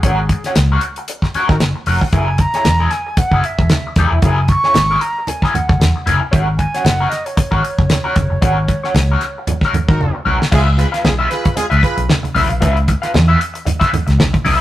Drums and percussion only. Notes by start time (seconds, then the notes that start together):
0.03 kick, closed hi-hat
0.29 kick, closed hi-hat
0.44 snare, closed hi-hat
0.55 snare, closed hi-hat
0.81 closed hi-hat
0.96 closed hi-hat
1.08 closed hi-hat
1.22 kick, snare
1.34 closed hi-hat
1.49 kick, snare
1.60 snare, closed hi-hat
1.86 open hi-hat
2.01 kick
2.13 kick, closed hi-hat, muted conga
2.38 kick, closed hi-hat, muted conga
2.54 snare, closed hi-hat
2.65 snare, closed hi-hat, high conga
2.91 snare, closed hi-hat
3.17 kick, closed hi-hat, muted conga
3.32 kick
3.44 closed hi-hat
3.59 kick
3.70 snare, closed hi-hat, high conga
3.96 kick, snare, closed hi-hat, high conga
4.22 kick, closed hi-hat, muted conga
4.48 kick, closed hi-hat
4.64 snare
4.74 snare, closed hi-hat, high conga
5.01 closed hi-hat
5.27 closed hi-hat, muted conga
5.42 kick, snare
5.55 closed hi-hat, low conga
5.69 kick
5.81 snare, closed hi-hat, high conga
6.07 closed hi-hat, high conga
6.33 kick, closed hi-hat, muted conga
6.59 kick, closed hi-hat, muted conga
6.74 snare, closed hi-hat
6.85 snare, closed hi-hat, high conga
7.12 snare, closed hi-hat
7.26 closed hi-hat
7.37 kick, closed hi-hat, muted conga
7.52 kick
7.64 closed hi-hat
7.79 kick
7.90 snare, closed hi-hat, high conga
8.16 kick, closed hi-hat, high conga
8.42 kick, closed hi-hat, muted conga
8.68 kick, closed hi-hat, muted conga
8.84 snare
8.95 snare, closed hi-hat, high conga
9.21 snare, closed hi-hat
9.47 closed hi-hat, muted conga, low conga
9.61 kick, snare
9.74 closed hi-hat, low conga
9.89 kick
10.01 high conga
10.27 high conga
10.42 snare
10.52 kick, crash, muted conga
10.78 closed hi-hat, muted conga
10.94 snare, closed hi-hat
11.05 snare, high conga
11.31 snare, closed hi-hat
11.45 kick, closed hi-hat
11.57 closed hi-hat, muted conga
11.72 closed hi-hat
11.83 kick, closed hi-hat
11.98 closed hi-hat
12.10 snare, high conga
12.24 closed hi-hat, high conga
12.36 open hi-hat, high conga
12.50 closed hi-hat
12.62 kick, closed hi-hat, muted conga
12.77 closed hi-hat
12.88 kick, closed hi-hat, muted conga
13.03 snare, closed hi-hat
13.14 snare, high conga
13.41 closed hi-hat
13.55 closed hi-hat
13.67 closed hi-hat, muted conga, low conga
13.81 kick, snare, closed hi-hat
13.94 closed hi-hat, low conga
14.08 snare, closed hi-hat
14.20 snare, high conga
14.33 kick, closed hi-hat, high conga
14.45 open hi-hat, high conga